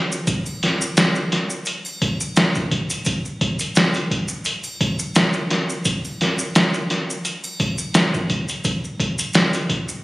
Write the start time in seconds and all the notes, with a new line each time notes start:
0.12 maracas
0.27 kick, closed hi-hat, maracas
0.46 triangle, maracas
0.63 snare, closed hi-hat
0.81 maracas
0.97 snare, closed hi-hat, maracas
1.15 maracas
1.32 snare, closed hi-hat
1.50 maracas
1.65 closed hi-hat, maracas
1.85 triangle, maracas
2.02 kick, closed hi-hat
2.20 maracas
2.36 snare, closed hi-hat, maracas
2.55 kick, maracas
2.71 kick, closed hi-hat
2.90 closed hi-hat, maracas
3.05 kick, closed hi-hat, maracas
3.25 maracas
3.41 kick, closed hi-hat
3.59 closed hi-hat, maracas
3.75 snare, closed hi-hat, maracas
3.94 closed hi-hat, maracas
4.11 kick, closed hi-hat
4.28 maracas
4.45 closed hi-hat, maracas
4.64 triangle, maracas
4.81 kick, closed hi-hat
4.99 maracas
5.15 snare, closed hi-hat, maracas
5.33 maracas
5.50 snare, closed hi-hat
5.69 maracas
5.85 kick, closed hi-hat, maracas
6.05 triangle, maracas
6.21 snare, closed hi-hat
6.39 maracas
6.55 snare, closed hi-hat, maracas
6.74 maracas
6.90 snare, closed hi-hat
7.10 maracas
7.25 closed hi-hat, maracas
7.44 triangle, maracas
7.60 kick, closed hi-hat
7.78 maracas
7.94 snare, closed hi-hat, maracas
8.14 kick, maracas
8.30 kick, closed hi-hat
8.48 closed hi-hat, maracas
8.64 kick, closed hi-hat, maracas
8.84 maracas
9.00 kick, closed hi-hat
9.18 closed hi-hat, maracas
9.33 snare, closed hi-hat, maracas
9.53 closed hi-hat, maracas
9.69 kick, closed hi-hat
9.89 maracas